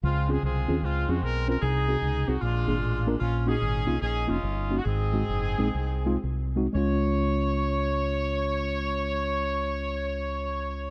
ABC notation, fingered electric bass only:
X:1
M:4/4
L:1/8
Q:"Swing" 1/4=139
K:Db
V:1 name="Fingered electric bass" clef=bass
D,,2 C,, E,, D,, F,, _C,,2 | C,,2 D,, C,, B,,, A,,, =A,,,2 | B,,,2 A,,, C,, B,,, F,,, =G,,,2 | A,,,2 G,,, B,,, C,,2 C,,2 |
D,,8- | D,,8 |]